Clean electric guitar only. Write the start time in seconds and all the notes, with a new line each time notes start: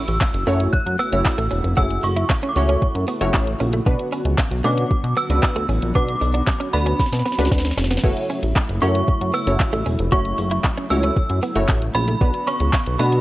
0.08 muted clean electric guitar stroke
0.47 A3
0.99 B3
1.25 muted clean electric guitar stroke
1.38 A3
1.51 C#4
1.77 F#4
2.03 muted clean electric guitar stroke
2.16 E4
2.43 C#4
2.56 muted clean electric guitar stroke
2.69 C#4
2.82 muted clean electric guitar stroke
3.08 B3
3.21 A3
3.34 muted clean electric guitar stroke
3.60 C#4
3.73 A3
3.86 B3
4.13 C#4
4.26 muted clean electric guitar stroke
4.64 A3
5.17 B3
5.43 muted clean electric guitar stroke
5.56 A3
5.69 C#4
5.95 B3
6.21 muted clean electric guitar stroke
6.34 D4
6.60 C#4
6.73 muted clean electric guitar stroke
6.86 C#4
6.99 muted clean electric guitar stroke
7.26 B3
7.39 A3
7.52 muted clean electric guitar stroke
7.78 C#4
7.91 B3
8.04 B3
8.30 C#4
8.43 muted clean electric guitar stroke
8.82 A3
9.34 B3
9.60 muted clean electric guitar stroke
9.73 A3
9.86 C#4
10.12 F#4
10.38 muted clean electric guitar stroke
10.51 E4
10.78 C#4
10.91 muted clean electric guitar stroke
11.04 C#4
11.17 muted clean electric guitar stroke
11.43 B3
11.56 A3
11.69 muted clean electric guitar stroke
11.95 C#4
12.08 A3
12.21 B3
12.48 C#4
12.61 muted clean electric guitar stroke
13.00 A3